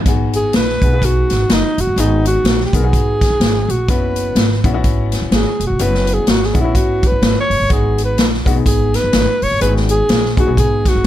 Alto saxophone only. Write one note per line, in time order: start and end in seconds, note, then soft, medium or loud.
0.36 0.58 G#4 loud
0.56 1.06 B4 loud
1.05 1.55 F#4 loud
1.53 1.82 D#4 medium
1.80 2.02 F#4 medium
2.00 2.27 D#4 medium
2.27 2.63 F#4 loud
2.65 2.77 G4 medium
2.75 3.72 G#4 loud
3.71 3.91 F#4 medium
3.90 4.65 B4 medium
5.35 5.63 G#4 medium
5.67 5.84 F#4 medium
5.82 6.15 B4 medium
6.14 6.31 G#4 medium
6.29 6.47 F#4 medium
6.45 6.60 G#4 medium
6.61 6.77 E4 medium
6.75 7.09 F#4 loud
7.07 7.39 B4 medium
7.40 7.69 C#5 loud
7.72 8.01 G#4 medium
8.05 8.27 B4 medium
8.67 8.97 G#4 loud
8.95 9.45 B4 loud
9.43 9.61 C#5 loud
9.62 9.74 B4 loud
9.91 10.35 G#4 loud
10.40 10.57 F#4 medium
10.59 10.90 G#4 loud
10.89 11.07 F#4 loud